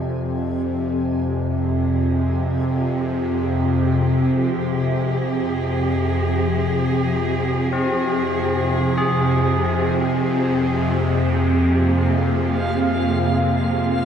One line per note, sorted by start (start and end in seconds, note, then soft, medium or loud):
0.00 0.95 F2 medium
0.00 0.95 C3 medium
0.00 1.70 D4 medium
0.00 0.98 G#5 medium
0.96 14.05 F2 medium
0.96 14.05 C3 medium
0.96 10.97 F3 medium
1.44 13.21 G4 medium
1.62 14.05 G#4 medium
2.40 14.05 C4 medium
7.73 9.22 C4 medium
8.98 14.05 G#4 medium
10.96 14.05 A#3 medium
10.96 14.05 F5 medium
11.63 14.05 F4 medium
13.55 14.05 C5 medium